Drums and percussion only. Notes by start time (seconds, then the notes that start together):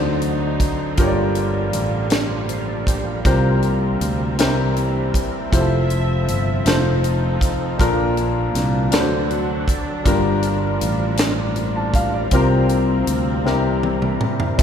0.22 closed hi-hat
0.60 kick, closed hi-hat
0.97 kick, closed hi-hat
1.35 closed hi-hat
1.73 closed hi-hat
2.10 snare, closed hi-hat
2.49 closed hi-hat
2.87 kick, closed hi-hat
3.25 kick, closed hi-hat
3.62 closed hi-hat
4.01 closed hi-hat
4.39 snare, closed hi-hat
4.76 closed hi-hat
5.14 kick, closed hi-hat
5.53 kick, closed hi-hat
5.90 closed hi-hat
6.28 closed hi-hat
6.66 snare, closed hi-hat
7.04 closed hi-hat
7.41 kick, closed hi-hat
7.79 kick, closed hi-hat
8.17 closed hi-hat
8.55 snare, closed hi-hat
8.92 snare, closed hi-hat
9.31 closed hi-hat
9.68 kick, closed hi-hat
10.06 kick, closed hi-hat
10.43 closed hi-hat
10.81 closed hi-hat
11.17 snare, closed hi-hat
11.56 closed hi-hat
11.94 kick, closed hi-hat
12.31 kick, closed hi-hat
12.69 closed hi-hat
13.07 closed hi-hat
13.47 snare
13.83 high tom
14.02 mid tom
14.21 mid tom
14.40 floor tom
14.59 kick, crash